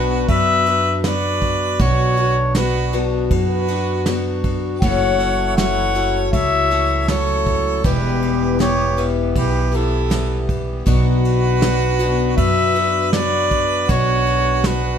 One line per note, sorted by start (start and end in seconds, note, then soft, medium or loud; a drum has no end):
0.00 0.24 B1 medium
0.00 0.67 B2 medium
0.00 1.03 F#3 medium
0.00 0.67 B3 medium
0.00 4.77 B3 medium
0.00 0.66 D4 medium
0.00 4.78 D4 medium
0.00 0.25 F#4 medium
0.00 0.66 F#4 medium
0.00 4.78 F#4 medium
0.00 0.24 B4 medium
0.28 1.76 F#2 medium
0.28 1.00 B4 medium
0.28 1.00 E5 loud
0.28 kick medium
0.28 ride medium
0.66 1.04 B3 soft
0.66 1.04 D4 medium
0.66 1.04 F#4 medium
0.66 ride medium
1.04 1.80 F#3 medium
1.04 1.79 B3 medium
1.04 1.80 D4 medium
1.04 1.81 F#4 medium
1.04 1.82 B4 medium
1.04 1.82 D5 medium
1.04 snare medium
1.04 ride medium
1.42 kick medium
1.42 ride soft
1.79 3.27 B1 loud
1.79 2.17 B2 medium
1.79 2.18 F#3 medium
1.79 2.18 B3 medium
1.79 2.18 D4 medium
1.79 2.39 F#4 medium
1.79 2.16 F#4 medium
1.79 2.56 C#5 loud
1.79 kick medium
1.79 ride medium
2.17 2.55 B3 soft
2.17 2.56 D4 soft
2.17 2.55 F#4 soft
2.17 ride soft
2.55 2.93 F#3 medium
2.55 2.93 B3 medium
2.55 2.92 D4 medium
2.55 3.01 F#4 medium
2.55 2.92 F#4 medium
2.55 3.01 B4 medium
2.55 snare medium
2.55 ride medium
2.93 3.70 B2 medium
2.93 3.69 F#3 medium
2.93 3.69 B3 medium
2.93 3.68 D4 medium
2.93 3.67 F#4 medium
2.93 ride medium
3.31 4.78 F#2 medium
3.31 4.41 F#4 medium
3.31 4.41 B4 medium
3.31 kick medium
3.31 ride medium
3.68 4.06 B3 soft
3.68 4.07 D4 soft
3.68 4.06 F#4 medium
3.68 ride medium
4.06 4.82 F#3 medium
4.06 4.83 B3 medium
4.06 4.83 D4 medium
4.06 4.83 F#4 medium
4.06 snare medium
4.06 ride medium
4.44 kick medium
4.44 ride soft
4.81 6.29 F#1 medium
4.81 5.20 F#2 medium
4.81 5.20 C#3 medium
4.81 5.20 E3 medium
4.81 7.81 F#3 medium
4.81 5.20 A3 medium
4.81 5.19 C#4 medium
4.81 7.81 E4 medium
4.81 5.18 F#4 medium
4.81 7.81 A4 medium
4.81 5.53 C#5 medium
4.81 5.53 F#5 loud
4.81 kick medium
4.81 ride medium
5.19 5.56 E3 soft
5.19 5.57 A3 soft
5.19 5.58 C#4 soft
5.19 5.57 F#4 soft
5.19 ride medium
5.57 5.95 E3 medium
5.57 5.95 A3 medium
5.57 5.94 C#4 medium
5.57 5.94 F#4 medium
5.57 6.29 C#5 medium
5.57 6.29 F#5 loud
5.57 snare medium
5.57 ride medium
5.95 6.72 F#2 medium
5.95 6.71 C#3 medium
5.95 6.71 E3 medium
5.95 6.71 A3 medium
5.95 6.71 C#4 medium
5.95 6.70 F#4 medium
5.95 ride medium
6.32 7.80 C#2 medium
6.32 7.04 C#5 medium
6.32 7.05 E5 loud
6.32 kick medium
6.32 ride medium
6.71 7.07 E3 soft
6.71 7.08 A3 soft
6.71 7.09 C#4 medium
6.71 7.09 F#4 medium
6.71 ride medium
7.08 7.84 E3 medium
7.08 7.85 A3 medium
7.08 7.85 C#4 medium
7.08 7.85 F#4 medium
7.08 7.80 A4 medium
7.08 7.81 C#5 medium
7.08 snare medium
7.08 ride medium
7.46 kick medium
7.46 ride soft
7.84 9.32 E1 medium
7.84 8.60 E2 medium
7.84 8.60 B2 medium
7.84 10.84 E3 medium
7.84 8.58 E3 medium
7.84 8.59 G3 medium
7.84 14.98 B3 medium
7.84 8.60 B3 medium
7.84 10.84 G4 medium
7.84 8.56 G4 medium
7.84 8.60 G4 medium
7.84 8.56 B4 medium
7.84 kick medium
7.84 ride medium
8.22 ride soft
8.59 8.97 E3 medium
8.59 8.97 G3 medium
8.59 8.97 B3 medium
8.59 9.06 G4 medium
8.59 8.96 G4 medium
8.59 9.06 C#5 medium
8.59 snare medium
8.59 ride medium
8.97 9.74 E2 soft
8.97 9.74 B2 medium
8.97 9.74 E3 medium
8.97 9.72 G3 medium
8.97 9.72 B3 medium
8.97 9.71 G4 medium
8.97 ride soft
9.35 10.83 B1 medium
9.35 9.76 G4 medium
9.35 9.77 B4 medium
9.35 kick medium
9.35 ride medium
9.72 10.09 E3 soft
9.72 10.09 G3 soft
9.72 10.10 B3 soft
9.72 10.49 E4 medium
9.72 10.10 G4 medium
9.72 10.50 A4 medium
9.72 ride soft
10.10 10.86 E3 medium
10.10 10.87 G3 medium
10.10 10.87 B3 medium
10.10 10.87 G4 medium
10.10 snare medium
10.10 ride medium
10.49 kick medium
10.49 ride soft
10.86 12.34 B1 medium
10.86 11.62 B2 medium
10.86 11.60 F#3 medium
10.86 11.61 B3 medium
10.86 14.98 D4 medium
10.86 11.62 D4 medium
10.86 14.98 F#4 medium
10.86 12.34 F#4 medium
10.86 11.63 F#4 medium
10.86 12.34 B4 loud
10.86 kick medium
10.86 ride medium
11.25 ride medium
11.61 11.99 F#3 medium
11.61 11.99 B3 medium
11.61 11.99 D4 medium
11.61 11.98 F#4 medium
11.61 snare medium
11.61 ride medium
11.99 12.76 B2 medium
11.99 13.13 F#3 medium
11.99 12.76 B3 medium
11.99 12.75 D4 medium
11.99 12.74 F#4 medium
11.99 ride medium
12.37 13.85 F#2 medium
12.37 13.09 B4 medium
12.37 13.09 E5 loud
12.37 kick medium
12.37 ride medium
12.75 13.13 B3 soft
12.75 13.14 D4 soft
12.75 13.13 F#4 medium
12.75 ride medium
13.13 13.89 F#3 medium
13.13 13.89 B3 medium
13.13 13.89 D4 medium
13.13 13.90 F#4 medium
13.13 13.92 B4 medium
13.13 13.91 D5 loud
13.13 snare medium
13.13 ride medium
13.51 kick medium
13.51 ride soft
13.89 14.98 B1 medium
13.89 14.65 B2 medium
13.89 14.64 F#3 medium
13.89 14.64 B3 medium
13.89 14.65 D4 medium
13.89 14.66 F#4 medium
13.89 14.68 C#5 loud
13.89 kick medium
13.89 ride medium
14.26 ride soft
14.64 14.98 F#3 medium
14.64 14.98 B3 medium
14.64 14.98 D4 medium
14.64 14.98 F#4 medium
14.64 14.98 B4 medium
14.64 snare medium
14.64 ride medium